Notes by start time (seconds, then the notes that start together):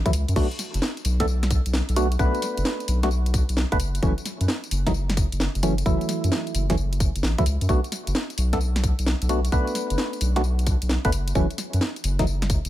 0.06 E3 F#3 A3 E4, kick, closed hi-hat, tambourine
0.13 C#2, open hi-hat, tambourine
0.29 F#2, closed hi-hat, tambourine
0.36 B1 A3 B3 D4 F#4, kick, crash, tambourine
0.51 closed hi-hat, tambourine
0.59 snare, open hi-hat, tambourine
0.74 F#1, closed hi-hat, tambourine
0.82 snare, tambourine
0.97 closed hi-hat, tambourine
1.05 B1, open hi-hat, tambourine
1.20 A3 B3 D4 A4, kick, snare, closed hi-hat, tambourine
1.28 tambourine
1.43 snare, closed hi-hat, tambourine
1.51 kick, open hi-hat, tambourine
1.66 B1, closed hi-hat, tambourine
1.74 snare, tambourine
1.89 B1, closed hi-hat, tambourine
1.96 A3 B3 D4 F#4, open hi-hat, tambourine
2.12 closed hi-hat, tambourine
2.19 B1 A3 B3 D4 B4, kick, tambourine
2.35 closed hi-hat, tambourine
2.42 snare, open hi-hat, tambourine
2.58 F#1, closed hi-hat, tambourine
2.65 snare, tambourine
2.80 closed hi-hat, tambourine
2.88 B1, open hi-hat, tambourine
3.03 A3 B3 D4 F#4, snare, closed hi-hat, tambourine
3.11 tambourine
3.26 closed hi-hat, tambourine
3.34 kick, open hi-hat, tambourine
3.49 B1, closed hi-hat, tambourine
3.57 snare, tambourine
3.72 F#1 A3 B3 D4 B4, kick, closed hi-hat, tambourine
3.80 open hi-hat, tambourine
3.95 closed hi-hat, tambourine
4.03 F#1 E3 F#3 A3 C#4, kick, tambourine
4.18 closed hi-hat, tambourine
4.26 snare, open hi-hat, tambourine
4.41 F#2, closed hi-hat, tambourine
4.48 snare, tambourine
4.64 closed hi-hat, tambourine
4.71 F#1, open hi-hat, tambourine
4.87 E3 F#3 A3 D#4, kick, snare, closed hi-hat, tambourine
4.94 tambourine
5.10 snare, closed hi-hat, tambourine
5.17 kick, open hi-hat, tambourine
5.32 F#1, closed hi-hat, tambourine
5.40 snare, tambourine
5.55 F#1, closed hi-hat, tambourine
5.63 E3 F#3 A3 C#4, open hi-hat, tambourine
5.78 closed hi-hat, tambourine
5.86 F#1 E3 F#3 A3 E4, kick, tambourine
6.01 closed hi-hat, tambourine
6.09 snare, open hi-hat, tambourine
6.24 F#2, closed hi-hat, tambourine
6.32 snare, tambourine
6.47 closed hi-hat, tambourine
6.55 F#1, open hi-hat, tambourine
6.70 E3 F#3 A3 C#4, kick, snare, closed hi-hat, tambourine
6.77 tambourine
6.93 closed hi-hat, tambourine
7.00 kick, open hi-hat, tambourine
7.16 F#1, closed hi-hat, tambourine
7.23 A1, snare, tambourine
7.38 E3 F#3 A3 E4, kick, closed hi-hat, tambourine
7.46 C#2, open hi-hat, tambourine
7.61 F#2, closed hi-hat, tambourine
7.69 B1 A3 B3 D4 F#4, kick, tambourine
7.84 closed hi-hat, tambourine
7.92 snare, open hi-hat, tambourine
8.07 F#1, closed hi-hat, tambourine
8.15 snare, tambourine
8.30 closed hi-hat, tambourine
8.38 B1, open hi-hat, tambourine
8.53 A3 B3 D4 A4, kick, snare, closed hi-hat, tambourine
8.61 tambourine
8.76 snare, closed hi-hat, tambourine
8.84 kick, open hi-hat, tambourine
8.99 B1, closed hi-hat, tambourine
9.06 snare, tambourine
9.22 B1, closed hi-hat, tambourine
9.29 A3 B3 D4 F#4, open hi-hat, tambourine
9.45 closed hi-hat, tambourine
9.52 B1 A3 B3 D4 B4, kick, tambourine
9.67 closed hi-hat, tambourine
9.75 snare, open hi-hat, tambourine
9.90 F#1, closed hi-hat, tambourine
9.98 snare, tambourine
10.13 closed hi-hat, tambourine
10.21 B1, open hi-hat, tambourine
10.36 A3 B3 D4 F#4, snare, closed hi-hat, tambourine
10.44 tambourine
10.59 closed hi-hat, tambourine
10.67 kick, open hi-hat, tambourine
10.82 B1, closed hi-hat, tambourine
10.89 snare, tambourine
11.05 F#1 A3 B3 D4 B4, kick, closed hi-hat, tambourine
11.12 open hi-hat, tambourine
11.28 closed hi-hat, tambourine
11.35 F#1 E3 F#3 A3 C#4, kick, tambourine
11.51 closed hi-hat, tambourine
11.58 snare, open hi-hat, tambourine
11.73 F#2, closed hi-hat, tambourine
11.81 snare, tambourine
11.96 closed hi-hat, tambourine
12.04 F#1, open hi-hat, tambourine
12.19 E3 F#3 A3 D#4, kick, snare, closed hi-hat, tambourine
12.27 tambourine
12.42 snare, closed hi-hat, tambourine
12.50 kick, open hi-hat, tambourine
12.65 F#1, closed hi-hat, tambourine